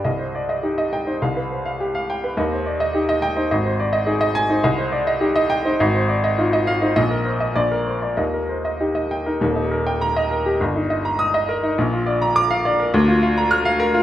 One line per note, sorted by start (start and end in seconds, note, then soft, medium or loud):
0.05 1.17 C2 medium
0.05 0.28 D#5 medium
0.19 0.42 C5 soft
0.35 0.49 D5 soft
0.49 0.72 D#5 medium
0.63 0.86 D#4 soft
0.63 0.86 G4 soft
0.78 1.01 D#5 medium
0.93 1.15 G5 medium
1.07 1.21 D#4 soft
1.07 1.21 C5 medium
1.22 2.33 C2 medium
1.22 1.44 F5 medium
1.37 1.59 B4 medium
1.51 1.65 C5 soft
1.66 1.88 F5 medium
1.80 2.03 G4 medium
1.95 2.17 F5 medium
2.10 2.31 G5 medium
2.24 2.37 B4 medium
2.37 3.47 D#2 medium
2.37 2.59 D#5 medium
2.52 2.74 C5 medium
2.66 2.80 D5 medium
2.80 3.02 D#5 medium
2.94 3.17 D#4 medium
2.94 3.17 G4 medium
3.09 3.31 D#5 medium
3.22 3.45 G5 medium
3.37 3.51 D#4 medium
3.37 3.50 C5 medium
3.51 4.61 G#1 medium
3.51 3.73 D#5 medium
3.66 3.88 C5 medium
3.79 3.93 D5 medium
3.93 4.15 D#5 medium
4.06 4.29 D#4 medium
4.06 4.29 G#4 medium
4.21 4.44 D#5 medium
4.35 4.58 G#5 loud
4.50 4.64 D#4 medium
4.50 4.64 C5 medium
4.64 5.76 C2 medium
4.64 4.87 D#5 medium
4.78 5.01 C5 medium
4.92 5.06 D5 medium
5.07 5.30 D#5 medium
5.21 5.44 D#4 medium
5.21 5.44 G4 medium
5.36 5.59 D#5 medium
5.50 5.73 G5 loud
5.65 5.80 D#4 medium
5.65 5.79 C5 medium
5.80 6.93 G#1 medium
5.80 6.03 D#5 medium
5.94 6.17 C5 medium
6.09 6.23 D5 medium
6.24 6.47 D#5 medium
6.38 6.61 D#4 medium
6.38 6.61 F4 medium
6.53 6.76 D#5 medium
6.67 6.90 F5 medium
6.82 6.96 D#4 medium
6.82 6.96 C5 medium
6.96 7.54 A#1 medium
6.96 7.20 D#5 medium
7.11 7.35 A#4 medium
7.25 7.40 C5 medium
7.40 7.56 D#5 medium
7.56 8.16 A#1 medium
7.56 7.80 D5 medium
7.72 7.97 A#4 medium
7.86 8.02 C5 medium
8.02 8.18 D5 medium
8.17 9.38 D#2 medium
8.17 8.43 D#5 medium
8.34 8.59 A#4 medium
8.49 8.65 C5 soft
8.65 8.90 D#5 medium
8.80 9.05 D#4 medium
8.80 9.05 G4 medium
8.95 9.20 D#5 medium
9.11 9.36 G5 medium
9.26 9.42 D#4 soft
9.26 9.42 A#4 soft
9.40 10.55 D#1 medium
9.40 10.56 D#2 medium
9.56 9.80 D#4 medium
9.71 9.95 A#4 medium
9.87 10.10 G5 medium
10.01 10.25 A#5 medium
10.16 10.40 D#5 medium
10.31 10.54 A#4 medium
10.46 10.60 G4 medium
10.60 11.74 G1 medium
10.76 10.99 D#4 medium
10.90 11.13 D#5 medium
11.05 11.28 A#5 medium
11.19 11.42 D#6 medium
11.34 11.57 D#5 medium
11.49 11.72 A#4 medium
11.63 11.78 D#4 medium
11.78 12.90 A#1 medium
11.93 12.16 F4 medium
12.06 12.30 D5 medium
12.22 12.44 A#5 medium
12.36 12.59 D6 loud
12.51 12.73 F5 medium
12.65 12.88 D5 medium
12.80 12.94 A#4 medium
12.94 14.03 D2 loud
13.08 13.31 F4 medium
13.23 13.45 F5 medium
13.37 13.60 A#5 medium
13.51 13.73 F6 loud
13.65 13.88 F5 medium
13.80 14.02 A#4 medium
13.94 14.03 F4 medium